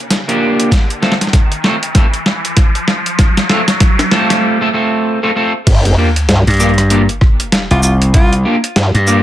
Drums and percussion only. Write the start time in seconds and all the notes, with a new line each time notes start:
0.10 snare, closed hi-hat
0.29 closed hi-hat
0.60 closed hi-hat
0.72 kick, snare, closed hi-hat
0.90 closed hi-hat
1.03 snare
1.12 snare
1.21 snare, closed hi-hat
1.27 snare
1.33 kick, snare, closed hi-hat
1.52 closed hi-hat
1.64 snare
1.83 closed hi-hat
1.95 kick, snare, closed hi-hat
2.14 closed hi-hat
2.26 snare
2.45 closed hi-hat
2.57 kick, snare, closed hi-hat
2.75 closed hi-hat
2.88 snare
3.06 closed hi-hat
3.19 kick, snare, closed hi-hat
3.37 snare, closed hi-hat
3.50 snare
3.68 snare, closed hi-hat
3.80 kick, snare, closed hi-hat
3.99 snare, closed hi-hat
4.11 snare
4.30 snare, closed hi-hat
5.67 kick, closed hi-hat, crash
5.85 closed hi-hat
6.16 closed hi-hat
6.29 snare, closed hi-hat
6.47 closed hi-hat
6.50 closed hi-hat
6.54 closed hi-hat
6.60 closed hi-hat, shaker
6.69 closed hi-hat
6.74 closed hi-hat
6.78 cross-stick, closed hi-hat
6.90 closed hi-hat
7.09 closed hi-hat
7.21 kick, cross-stick
7.40 closed hi-hat
7.52 snare, closed hi-hat
7.71 closed hi-hat
7.83 shaker
8.02 closed hi-hat
8.14 kick, closed hi-hat
8.33 closed hi-hat
8.64 closed hi-hat
8.76 snare, closed hi-hat
8.95 closed hi-hat
9.07 shaker